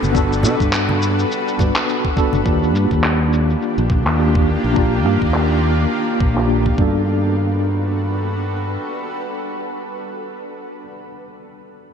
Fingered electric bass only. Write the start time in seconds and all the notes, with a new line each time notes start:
0.03 G1
0.44 B2
0.60 G2
1.59 G2
2.34 G1
2.46 D#2
2.75 G2
2.91 D#2
3.78 A#1
4.06 D#2
4.64 A#1
5.06 G2
5.22 D#2
6.20 A#1
6.78 G2